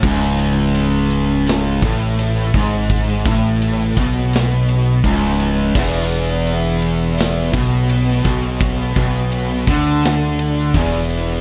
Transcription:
<<
  \new Staff \with { instrumentName = "Distorted electric guitar" } { \clef bass \time 4/4 \key cis \phrygian \tempo 4 = 84 cis,2~ cis,8 a,4 gis,8~ | gis,8 a,4 b,4. cis,4 | e,2~ e,8 b,4 b,8~ | b,8 b,4 d4. e,4 | }
  \new Staff \with { instrumentName = "Fingered electric bass" } { \clef bass \time 4/4 \key cis \phrygian cis,,2~ cis,,8 a,,4 gis,,8~ | gis,,8 a,,4 b,,4. cis,,4 | e,,2~ e,,8 b,,4 b,,8~ | b,,8 b,,4 d,4. e,,4 | }
  \new DrumStaff \with { instrumentName = "Drums" } \drummode { \time 4/4 <cymc bd>8 cymr8 cymr8 cymr8 <cymr sn>8 <bd cymr>8 cymr8 <bd cymr>8 | <bd cymr>8 <bd cymr>8 cymr8 <bd cymr>8 <cymr sn>8 cymr8 <bd cymr>8 cymr8 | <cymc bd>8 cymr8 cymr8 cymr8 <cymr sn>8 <bd cymr>8 cymr16 sn16 <bd cymr>8 | <bd cymr>8 <bd cymr>8 cymr8 <bd cymr>8 <cymr sn>8 cymr8 <bd cymr>8 cymr8 | }
>>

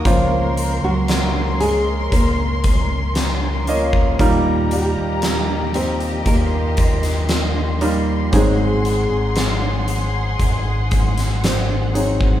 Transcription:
<<
  \new Staff \with { instrumentName = "String section" } { \time 4/4 \key ees \dorian \tempo 4 = 58 << { c'''1 | bes''2 c'''2~ | c'''1 | } \\ { <des' bes'>1 | <g' ees''>1 | <aes' ges''>1 | } >> }
  \new Staff \with { instrumentName = "Nylon-string guitar" } { \time 4/4 \key ees \dorian <f f'>8. <ges ges'>8. <aes aes'>8 <bes bes'>4. r8 | r8 <g g'>4 <c' c''>8 <bes bes'>2 | <aes aes'>2. <c' c''>4 | }
  \new Staff \with { instrumentName = "Grand piano" } { \time 4/4 \key ees \dorian <bes des' c'' f''>2 r4. <bes des' f' ees''>8 | <g bes ees' bes'>2 r4. <g bes ees' bes'>8 | <ges c' ees' aes'>2 r4. <ges c' ees' aes'>8 | }
  \new Staff \with { instrumentName = "Grand piano" } { \clef bass \time 4/4 \key ees \dorian des4. r2 r8 | bes,4. r2 r8 | <aes, ees>4. r2 r8 | }
  \new Staff \with { instrumentName = "Fingered electric bass" } { \clef bass \time 4/4 \key ees \dorian des,8. des,4~ des,16 des,2 | ees,8. ees,4~ ees,16 ees,2 | aes,,8. aes,,4~ aes,,16 aes,,2 | }
  \new DrumStaff \with { instrumentName = "Drums" } \drummode { \time 4/4 <hh bd>8 hh8 <hh sn>8 hh8 <hh bd>8 <hh bd>8 <hh sn>8 hh16 bd16 | <hh bd>8 hh8 <hh sn>8 hh16 hh16 <hh bd>8 <hh bd>16 <hh sn>16 <hh sn>8 hh8 | <hh bd>8 hh8 <hh sn>8 hh8 <hh bd>8 <hh bd>16 <hh sn>16 <hh sn>8 hh16 bd16 | }
>>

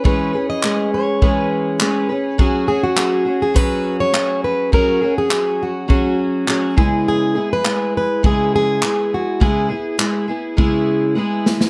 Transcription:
<<
  \new Staff \with { instrumentName = "Steel-string acoustic guitar" } { \time 4/4 \key cis \dorian \tempo 4 = 103 b'8. dis''8. cis''4 r4. | r8 gis'16 fis'4 gis'16 b'8. cis''8. b'8 | ais'8. gis'8. fis'4 r4. | gis'8. b'8. b'8 gis'8 gis'4 fis'8 |
gis'4 r2. | }
  \new Staff \with { instrumentName = "Twelve-string acoustic guitar" } { \time 4/4 \key cis \dorian <e gis cis' gis' b'>8 <cis' gis' b'>8 <gis cis' gis' b'>4 <e gis cis' gis' b'>4 <gis cis' gis' b'>8 <cis' gis' b'>8 | <fis cis' fis' gis'>8 <cis' fis' gis'>8 <fis cis' fis' gis'>8 <cis' fis' gis'>8 <fis cis' fis' gis'>4 <fis cis' fis' gis'>4 | <fis cis' fis' gis'>8 <cis' fis' gis'>8 <fis cis' fis' gis'>4 <fis cis' fis' gis'>4 <fis cis' fis' gis'>8 <cis gis b e' gis'>8~ | <cis gis b e' gis'>8 <b e' gis'>8 <gis b e' gis'>4 <cis gis b e' gis'>4 <gis b e' gis'>4 |
<cis gis b e' gis'>8 <b e' gis'>8 <gis b e' gis'>8 <b e' gis'>8 <cis gis b e' gis'>4 <gis b e' gis'>4 | }
  \new DrumStaff \with { instrumentName = "Drums" } \drummode { \time 4/4 bd4 hc4 bd4 hc4 | bd4 hc4 bd4 hc4 | bd4 hc4 bd4 hc8 bd8 | r4 hc4 bd4 hc4 |
bd4 hc4 bd4 r8 sn16 sn16 | }
>>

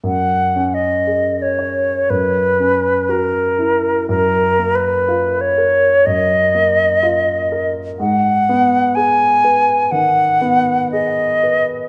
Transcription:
<<
  \new Staff \with { instrumentName = "Flute" } { \time 4/4 \key fis \major \tempo 4 = 60 \tuplet 3/2 { fis''4 dis''8~ dis''8 cis''4 } b'4 ais'4 | \tuplet 3/2 { ais'4 b'8~ b'8 cis''4 } dis''4. r8 | fis''4 gis''4 fis''4 dis''4 | }
  \new Staff \with { instrumentName = "Grand piano" } { \time 4/4 \key fis \major fis,8 cis'8 gis'8 cis''8 fis,8 cis'8 fis'8 e'8 | fis,8 ais8 eis'8 ais'8 fis,8 ais8 eis'8 ais'8 | gis,8 b8 gis'8 b'8 dis8 b8 gis'8 b'8 | }
>>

